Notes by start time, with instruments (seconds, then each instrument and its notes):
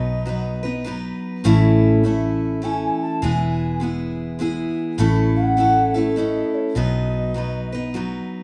Already playing: fingered electric bass B1, steel-string acoustic guitar B2 F#3 B3 D#4 B4, ocarina D#5
0.26 steel-string acoustic guitar F#3 B3 D#4 B4
0.63 steel-string acoustic guitar B3 D#4 B4
0.85 steel-string acoustic guitar F#3 B3 D#4 B4
1.44 fingered electric bass A1, steel-string acoustic guitar A2 E3 A3 C#4 E4 A4
2.03 steel-string acoustic guitar A3 C#4 E4 A4, ocarina E5
2.62 steel-string acoustic guitar A3 C#4 E4 A4, ocarina G#5
3.01 ocarina A5
3.22 fingered electric bass E1, steel-string acoustic guitar E3 G#3 B3 E4 G#4, ocarina G#5
3.80 steel-string acoustic guitar G#3 B3 E4 G#4
4.39 steel-string acoustic guitar G#3 B3 E4 G#4
4.98 fingered electric bass A1, steel-string acoustic guitar A2 E3 A3 C#4 E4 A4
5.35 ocarina F#5
5.57 steel-string acoustic guitar A3 C#4 E4 A4
5.94 steel-string acoustic guitar A3 C#4 E4 A4, ocarina E5
6.16 steel-string acoustic guitar A3 C#4 E4 A4, ocarina D#5
6.54 ocarina C#5
6.75 fingered electric bass B1, steel-string acoustic guitar B2 F#3 B3 D#4 B4, ocarina D#5
7.34 steel-string acoustic guitar F#3 B3 D#4 B4
7.72 steel-string acoustic guitar B3 D#4 B4
7.94 steel-string acoustic guitar F#3 B3 D#4 B4